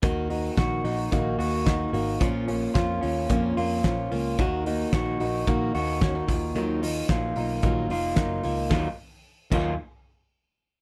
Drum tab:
CC |--------|--------|--------|--------|
HH |xoxoxoxo|xoxoxoxo|xoxoxoxo|xoxoxoxo|
SD |--o---o-|--o---o-|--o---o-|--o---o-|
BD |o-o-o-o-|o-o-o-o-|o-o-o-oo|--o-o-o-|

CC |---x----|
HH |--------|
SD |o-------|
BD |o--o----|